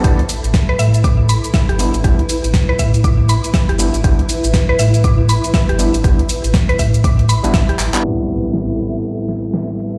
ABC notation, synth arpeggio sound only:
X:1
M:4/4
L:1/16
Q:"Swing 16ths" 1/4=120
K:Ephr
V:1 name="Synth arpeggio sound"
G z4 B e z d' z b z e G z2 | G z4 B e z d' z b z e G z2 | G z4 B e z d' z b z e G z2 | G z4 B e z d' z b z e G z2 |
z16 |]